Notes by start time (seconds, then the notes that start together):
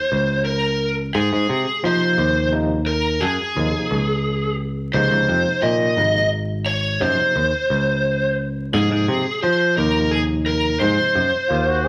Already playing: C5
0.12 C#2
0.45 A#4
1.15 G#2 G#4
1.33 G#2
1.49 C3
1.83 C3 F3 A#3 D#4 C5
2.18 D#2
2.52 C3 F3 A#3 D#4
2.86 A#4
3.21 F#2 G#4
3.56 D#2 C3 F3 A#3 D#4
3.91 C#2
4.93 C#2 C3 F3 A#3 D#4 C5
5.11 C#2
5.28 F2
5.62 A#2 D#5
5.96 G#1 C3 F3 A#3 D#4
6.66 C#5
7.00 F#2 C3 F3 A#3 D#4 C5
7.36 D#2
7.70 C#2
8.72 G#2 C3 F3 A#3 D#4 G#4
8.91 G#2
9.08 C3
9.43 F3 C5
9.76 D#2 C3 F3 A#3 D#4 A#4
10.11 G#4
10.46 A#4
10.80 G#2 C3 F3 A#3 D#4 C5
11.15 F#2
11.49 D#2 F4
11.67 F#4
11.84 G#4